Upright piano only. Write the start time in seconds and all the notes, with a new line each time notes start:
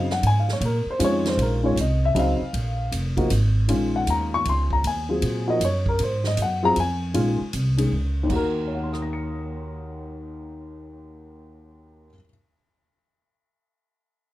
Already playing: F5
0.12 F#5
0.27 G#5
0.40 F5
0.53 C#5
0.65 A#4
0.91 C5
0.99 D#3 G#3 C#4 F4
1.04 C#5
1.28 C5
1.42 A#4
1.63 D#3 G#3 C#4 F4 C#5
1.81 D#5
2.05 E5
2.15 C#3 F#3 C4 D#4
2.19 F5
3.17 F3 A#3 D#4 F#4
3.68 D#3 G#3 C#4 F4
3.96 F#5
4.10 A#5
4.34 C#6
4.49 C6
4.73 A#5
4.87 G#5
5.09 F#3 C4 F4 G#4
5.47 F3 A#3 D#4 F#4 D#5
5.65 C#5
5.89 A#4
6.03 C5
6.27 D#5
6.42 F#5
6.63 F#3 C4 F4 G#4 A#5
6.80 G#5
7.14 D#3 G#3 C#4 F4
7.77 D#3 G#3 C#4 G#4
8.23 D#2 D#3
8.30 A#3 F#4
8.35 A#4
8.68 C#5
8.75 F#5
8.83 C6
8.93 D#6
9.02 A#6
9.13 C#7